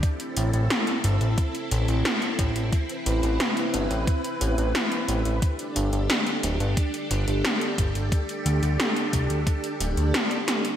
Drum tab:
HH |xxxxxxxxxxxxxxxx|xxxxxxxxxxxxxxxx|xxxxxxxxxxxxxxxx|xxxxxxxxxxxxxxxx|
SD |----o-------o---|----o-------o---|----o-------o---|----o-------o-o-|
BD |o-------o-----o-|o-------o-------|o-------o-----o-|o-----o-o-------|